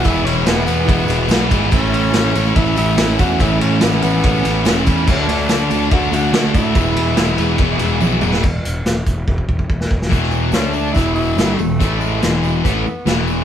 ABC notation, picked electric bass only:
X:1
M:4/4
L:1/8
Q:1/4=143
K:Emix
V:1 name="Picked electric bass" clef=bass
E,,, E,,, E,,, E,,, E,,, E,,, B,,, G,,, | A,,, A,,, A,,, A,,, A,,, A,,, A,,, E,, | A,,, A,,, A,,, A,,, A,,, A,,, E,,, E,, | D,, D,, D,, D,, D,, D,, D,, A,, |
E,,, E,,, E,,, E,,, E,,, E,,, B,,, E,,, | E,,, E,,, E,,, E,,, E,,, E,,, E,,, E,,, | E,,,2 D,,2 E,,,2 =G,,, E,,, | A,,,2 E,,,2 A,,, z E,,,2 |]